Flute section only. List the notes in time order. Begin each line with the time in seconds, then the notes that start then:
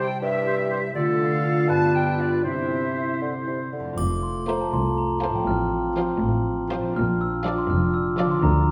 Already playing: G5
0.21 E5
0.94 D5
1.20 F5
1.69 A5
1.95 G5
2.20 D5
2.45 E5